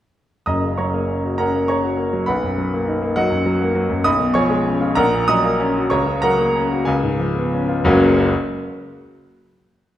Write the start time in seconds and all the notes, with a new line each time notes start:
0.46 F#1 F#2 D#5 A#5 D#6
0.63 C#3
0.78 F#3 C#5 A#5 C#6
0.94 A#3
1.08 C#4
1.24 F#4
1.38 C#4 A#4 F#5 A#5
1.55 A#3
1.68 C#4 C#5 A#5 C#6
1.83 F#4
1.97 A#3
2.13 F#3
2.26 B1 B4 F#5 B5
2.43 F#2
2.58 F#3
2.74 A#3
2.87 D#4
3.02 A#3
3.16 F#3 F#4 D#5 F#5
3.30 F#2
3.46 F#3
3.62 A#3
3.75 F#3
3.90 F#2
4.04 B1 D#5 B5 D#6
4.20 B2
4.34 F3 C#5 G#5 C#6
4.50 G#3
4.65 C#4
4.81 F4
4.95 A#1 A#4 F#5 A#5
5.14 A#2
5.28 F#3 D#5 A#5 D#6
5.44 A#3
5.60 C#4
5.76 F#4
5.90 C#2 C#5 A#5 C#6
6.06 C#3
6.22 F#3 A#4 F#5 A#5
6.38 A#3
6.56 C#4
6.71 F#4
6.85 C#2 G#4 F5 G#5
7.04 G#2
7.19 F3
7.35 B3
7.53 C#4
7.69 F4
7.84 F#1 C#2 F#3 A#3 C#4 F#4 F#5